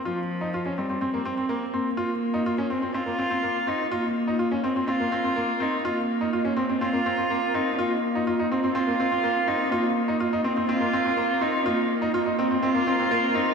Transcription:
<<
  \new Staff \with { instrumentName = "Cello" } { \time 4/4 \key c \phrygian \tempo 4 = 124 f4. g8 c'4. bes8 | bes4. c'8 f'4. ees'8 | bes4. c'8 f'4. ees'8 | bes4. c'8 f'4. ees'8 |
bes4. c'8 f'4. ees'8 | bes4. c'8 f'4. ees'8 | bes4. c'8 f'4. ees'8 | }
  \new Staff \with { instrumentName = "Upright piano" } { \time 4/4 \key c \phrygian f'8 r16 ees'16 f'16 des'16 c'16 c'16 c'16 bes16 c'16 c'16 bes8 c'8 | f'8 r16 ees'16 f'16 des'16 c'16 c'16 c'16 bes16 c'16 c'16 bes8 c'8 | f'8 r16 ees'16 f'16 des'16 c'16 c'16 c'16 bes16 c'16 c'16 bes8 c'8 | f'8 r16 ees'16 f'16 des'16 c'16 c'16 c'16 bes16 c'16 c'16 bes8 c'8 |
f'8 r16 ees'16 f'16 ees'16 c'16 c'16 c'16 bes16 c'16 c'16 bes8 c'8 | f'8 r16 ees'16 f'16 ees'16 c'16 c'16 c'16 bes16 c'16 c'16 bes8 c'8 | f'8 r16 ees'16 f'16 ees'16 c'16 c'16 c'16 bes16 c'16 c'16 bes8 c'8 | }
>>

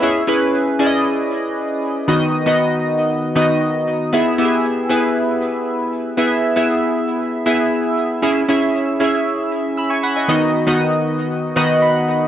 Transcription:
\new Staff \with { instrumentName = "Synth keys" } { \time 4/4 \key e \major \tempo 4 = 117 << { b'16 r2. r8. | r1 | r1 | r1 |
r2. <b'' e'''>16 <gis'' cis'''>16 <fis'' b''>16 <dis'' gis''>16~ | <dis'' gis''>16 r2 r16 fis''8 b''4 | } \\ { <cis' e' gis' e''>8 <cis' e' gis' b'>8. r16 <cis' e' gis' d'' dis''>4. r4 | <dis b dis' fis' dis''>8 r16 <dis b dis' fis' dis''>4~ <dis b dis' fis' dis''>16 r8 <dis b dis' fis' dis''>4~ <dis b dis' fis' dis''>16 r16 | <b e' gis' e''>8 <b e' g' gis' e''>8. r16 <b e' gis' b'>4. r4 | <b e' gis' e''>8 r16 <b e' gis' e''>4~ <b e' gis' e''>16 r8 <b e' gis' e''>4~ <b e' gis' e''>16 r16 |
<cis' e' gis' e''>8 <cis' e' gis' e''>8. r16 <cis' e' gis' e''>4. r4 | <dis b dis' fis' dis''>8 r16 <dis b dis' fis' dis''>4~ <dis b dis' fis' dis''>16 r8 <dis b dis' fis' dis''>4~ <dis b dis' fis' dis''>16 r16 | } >> }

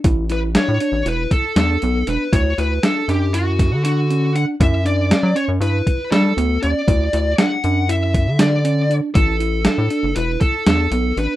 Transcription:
<<
  \new Staff \with { instrumentName = "Lead electric guitar" } { \time 9/8 \key d \major \tempo 4. = 79 r8 b'8 cis''4 b'8 a'8 a'4 b'8 | cis''8 b'8 a'8 g'8 fis'4 fis'4 fis''8 | e''8 d''4 cis''8 b'4 a'4 d''8~ | d''4 fis''4 e''4 d''4 r8 |
a'2 b'8 a'8 a'4 b'8 | }
  \new Staff \with { instrumentName = "Tine electric piano" } { \time 9/8 \key d \major e'8 e'8 d'8 d'8 e'4 d'8 b8 d'8 | e'8 e'8 d'8 d'8 e'4 d'8 cis'8 d'8 | e'8 d'8 cis'8 cis'8 e'4 d'8 b8 cis'8 | e'8 e'8 d'8 d'8 e'4 d'8 cis'8 d'8 |
e'8 e'8 d'8 d'8 e'4 d'8 b8 d'8 | }
  \new Staff \with { instrumentName = "Analog synth bass" } { \clef bass \time 9/8 \key d \major a,,4~ a,,16 a,16 r16 a,,16 e,,8 r8 e,8 b,,8 e,,16 r16 | d,8 d,8 r8 fis,4~ fis,16 d4.~ d16 | fis,4~ fis,16 fis16 r16 fis,16 g,8 r8 g8 d,8 ees,16 r16 | d,8 d,8 r8 fis,4~ fis,16 d4.~ d16 |
a,,4~ a,,16 a,16 r16 fis,,16 e,,8 r8 e,8 b,,8 a,,16 r16 | }
  \new DrumStaff \with { instrumentName = "Drums" } \drummode { \time 9/8 <hh bd>8 hh8 <hh sn>8 hh8 hh8 <hh bd>8 <hh sn>8 hh8 hh8 | <hh bd>8 hh8 <hh sn>8 hh8 hh8 <hh bd sn>8 hh8 hh8 hh8 | <hh bd>8 hh8 <hh sn>8 hh8 hh8 <hh bd>8 <hh sn>8 hh8 hh8 | <hh bd>8 hh8 <hh sn>8 hh8 hh8 <hh bd>8 <hh sn>8 hh8 hh8 |
<hh bd>8 hh8 <hh sn>8 hh8 hh8 <hh bd>8 <hh sn>8 hh8 hh8 | }
>>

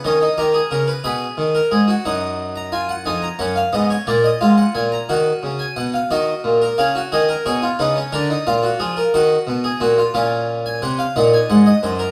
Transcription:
<<
  \new Staff \with { instrumentName = "Harpsichord" } { \time 6/8 \key dis \phrygian \tempo 4. = 59 << { dis''8 ais''4 b''4. | fis''8. ais''16 gis''16 fis''16 aes''16 ais''16 fis''16 f''16 ees''16 cis''16 | d''16 dis''16 eis''16 fis''16 gis''16 ais''16 fis''8. gis''16 fis''16 eis''16 | \key ees \minor ees''4 f''8 ees''8 des''8 ces''8 |
bes'8 f''4 ges''4. | f''8. aes''16 ges''16 f''16 ges''16 aes''16 ges''16 ees''16 c''16 bes'16 | } \\ { cis'16 dis'16 g'16 gis'16 ais'16 b'16 gis'8. ais'16 gis'16 fis'16 | dis'4 eis'8 ees'8 cis'8 ces'8 | ais8 eis'4 fis'4. | ges'8. bes'16 aes'16 ges'16 aes'16 bes'16 aes'16 f'16 ees'16 des'16 |
d'16 ees'16 f'16 ges'16 aes'16 bes'16 ges'8. aes'16 ges'16 f'16 | des'4. ees'4. | } >> }
  \new Staff \with { instrumentName = "Harpsichord" } { \clef bass \time 6/8 \key dis \phrygian dis8 dis8 cis8 b,8 dis8 gis,8 | fis,4. f,8 fis,8 aes,8 | ais,8 gis,8 ais,8 dis8 cis8 b,8 | \key ees \minor ees8 bes,8 des8 ees8 ces8 des8 |
d8 bes,8 f8 ees8 ces8 bes,8 | bes,4 c8 bes,8 aes,8 ges,8 | }
>>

